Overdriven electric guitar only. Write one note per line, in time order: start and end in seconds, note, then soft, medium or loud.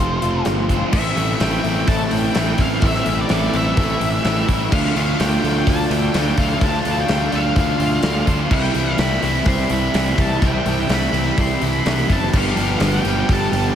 0.00 0.23 F3 medium
0.00 0.23 A3 medium
0.00 0.22 C4 medium
0.00 0.21 F4 medium
0.22 0.70 F3 medium
0.22 0.69 A3 medium
0.22 0.69 C4 medium
0.22 0.68 F4 medium
0.69 0.93 F3 medium
0.69 0.92 A3 medium
0.69 0.92 C4 medium
0.69 0.92 F4 medium
0.92 1.86 A2 loud
0.92 1.39 E3 loud
0.92 1.18 A3 loud
0.92 1.17 C4 loud
0.92 1.16 E4 loud
1.16 1.41 A3 medium
1.16 1.41 C4 medium
1.16 1.41 E4 medium
1.40 1.87 E3 medium
1.40 1.65 A3 medium
1.40 1.64 C4 medium
1.40 1.63 E4 medium
1.63 1.88 A3 medium
1.63 1.88 C4 medium
1.63 1.88 E4 medium
1.87 2.35 A2 loud
1.87 2.34 E3 loud
1.87 2.13 A3 loud
1.87 2.12 C4 loud
1.87 2.10 E4 loud
2.11 2.35 A3 medium
2.11 2.36 C4 medium
2.11 2.36 E4 medium
2.35 2.81 E3 medium
2.35 2.60 A3 medium
2.35 2.59 C4 medium
2.35 2.57 E4 medium
2.58 2.83 A3 medium
2.58 2.84 C4 medium
2.58 2.83 E4 medium
2.82 3.30 A2 loud
2.82 3.29 E3 loud
2.82 3.08 A3 loud
2.82 3.07 C4 loud
2.82 3.05 E4 loud
3.06 3.31 A3 medium
3.06 3.31 C4 medium
3.06 3.31 E4 medium
3.30 3.77 E3 medium
3.30 3.56 A3 medium
3.30 3.54 C4 medium
3.30 3.53 E4 medium
3.54 3.78 A3 medium
3.54 3.79 C4 medium
3.54 3.78 E4 medium
3.78 4.25 A2 loud
3.78 4.23 E3 loud
3.78 4.03 A3 loud
3.78 4.02 C4 loud
3.78 4.00 E4 loud
4.02 4.25 A3 medium
4.02 4.26 C4 medium
4.02 4.25 E4 medium
4.24 4.70 E3 medium
4.24 4.49 A3 medium
4.24 4.49 C4 medium
4.24 4.46 E4 medium
4.48 4.72 A3 medium
4.48 4.72 C4 medium
4.48 4.70 E4 medium
4.71 5.19 D3 loud
4.71 4.97 A3 loud
4.71 4.96 D4 loud
4.71 4.95 F4 loud
4.95 5.20 A3 medium
4.95 5.21 D4 medium
4.95 5.21 F4 medium
5.19 5.66 D3 medium
5.19 5.45 A3 medium
5.19 5.44 D4 medium
5.19 5.42 F4 medium
5.43 5.67 A3 medium
5.43 5.67 D4 medium
5.43 5.68 F4 medium
5.67 6.13 D3 loud
5.67 5.92 A3 loud
5.67 5.90 D4 loud
5.67 5.89 F4 loud
5.91 6.13 A3 medium
5.91 6.14 D4 medium
5.91 6.15 F4 medium
6.14 6.61 D3 medium
6.14 6.39 A3 medium
6.14 6.38 D4 medium
6.14 6.37 F4 medium
6.38 6.62 A3 medium
6.38 6.62 D4 medium
6.38 6.63 F4 medium
6.62 7.08 D3 loud
6.62 6.87 A3 loud
6.62 6.86 D4 loud
6.62 6.84 F4 loud
6.86 7.09 A3 medium
6.86 7.10 D4 medium
6.86 7.10 F4 medium
7.10 7.55 D3 medium
7.10 7.34 A3 medium
7.10 7.33 D4 medium
7.10 7.31 F4 medium
7.33 7.56 A3 medium
7.33 7.57 D4 medium
7.33 7.57 F4 medium
7.57 8.02 D3 loud
7.57 7.81 A3 loud
7.57 7.80 D4 loud
7.57 7.79 F4 loud
7.80 8.03 A3 medium
7.80 8.03 D4 medium
7.80 8.04 F4 medium
8.03 8.50 D3 medium
8.03 8.28 A3 medium
8.03 8.27 D4 medium
8.03 8.26 F4 medium
8.27 8.51 A3 medium
8.27 8.50 D4 medium
8.27 8.50 F4 medium
8.50 9.45 C3 medium
8.50 8.98 E3 loud
8.50 8.76 G3 loud
8.50 8.75 C4 medium
8.50 8.74 E4 loud
8.74 8.99 G3 medium
8.74 9.00 C4 medium
8.74 9.00 E4 medium
8.98 9.46 E3 medium
8.98 9.24 G3 medium
8.98 9.23 C4 medium
8.98 9.22 E4 medium
9.22 9.47 G3 medium
9.22 9.47 C4 medium
9.22 9.47 E4 medium
9.46 9.94 C3 loud
9.46 9.92 E3 loud
9.46 9.72 G3 loud
9.46 9.70 C4 loud
9.46 9.69 E4 loud
9.70 9.94 G3 medium
9.70 9.94 C4 medium
9.70 9.95 E4 medium
9.94 10.41 E3 medium
9.94 10.20 G3 medium
9.94 10.18 C4 medium
9.94 10.17 E4 medium
10.18 10.43 G3 medium
10.18 10.43 C4 medium
10.18 10.43 E4 medium
10.42 10.90 C3 loud
10.42 10.89 E3 loud
10.42 10.69 G3 loud
10.42 10.67 C4 loud
10.42 10.66 E4 loud
10.67 10.91 G3 medium
10.67 10.91 C4 medium
10.67 10.91 E4 medium
10.90 11.37 E3 medium
10.90 11.16 G3 medium
10.90 11.14 C4 medium
10.90 11.12 E4 medium
11.13 11.38 G3 medium
11.13 11.38 C4 medium
11.13 11.39 E4 medium
11.38 11.85 C3 loud
11.38 11.84 E3 medium
11.38 11.64 G3 loud
11.38 11.62 C4 loud
11.38 11.60 E4 loud
11.62 11.85 G3 medium
11.62 11.86 C4 medium
11.62 11.86 E4 medium
11.85 12.31 E3 medium
11.85 12.10 G3 medium
11.85 12.08 C4 medium
11.85 12.07 E4 loud
12.08 12.34 G3 medium
12.08 12.31 C4 medium
12.08 12.31 E4 medium
12.33 12.80 G2 loud
12.33 12.81 D3 loud
12.33 12.58 F3 loud
12.33 12.58 G3 loud
12.33 12.57 B3 loud
12.33 12.56 G4 loud
12.57 12.80 F3 medium
12.57 12.82 G3 medium
12.57 12.82 B3 medium
12.57 12.83 G4 medium
12.81 13.07 F3 medium
12.81 13.06 G3 medium
12.81 13.06 B3 medium
12.81 13.05 G4 medium
13.05 13.28 F3 medium
13.05 13.30 G3 medium
13.05 13.29 B3 medium
13.05 13.30 G4 medium
13.29 13.75 G2 loud
13.29 13.75 D3 loud
13.29 13.53 F3 loud
13.29 13.53 G3 loud
13.29 13.52 B3 loud
13.29 13.52 G4 loud
13.52 13.75 F3 medium
13.52 13.75 G3 medium
13.52 13.75 B3 medium
13.52 13.75 G4 medium